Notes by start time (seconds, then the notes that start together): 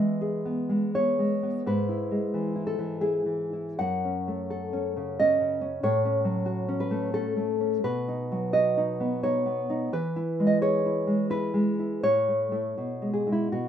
Already playing: E3 G#3 B3 E5
0.21 G#4
0.45 B3
0.69 G#3
0.94 B3 C#5
1.19 G#3
1.43 B3
1.66 G#2 B4
1.89 E4
2.11 G#3
2.34 E3
2.56 E4
2.67 A4
2.79 E3
3.01 E4 G#4
3.26 E3
3.53 E4
3.79 F#2 F#5
4.05 C#4
4.28 A3
4.50 A4
4.73 C#4
4.97 C#3
5.20 C#4 D#5
5.41 C#3
5.61 C#4
5.83 A2 C#5
6.05 C#4
6.25 F#3
6.46 F#4
6.68 C#4
6.80 B4
6.91 A3
7.14 C#4 A4
7.37 A3
7.60 C#4
7.84 B2 B4
8.08 D#4
8.32 F#3
8.53 F#4 D#5
8.77 D#4
9.00 B3
9.23 D#4 C#5
9.46 B3
9.70 D#4
9.93 E3 B4
10.16 E4
10.40 G#3
10.47 D#5
10.61 G#4 C#5
10.86 E4
11.07 G#3
11.30 E4 B4
11.54 G#3
11.79 E4
12.03 A2 C#5
12.28 A3
12.52 A3 E4
12.78 B2
13.02 G#3
13.13 G#4
13.27 G#3 E4
13.32 E4
13.52 B2 F#4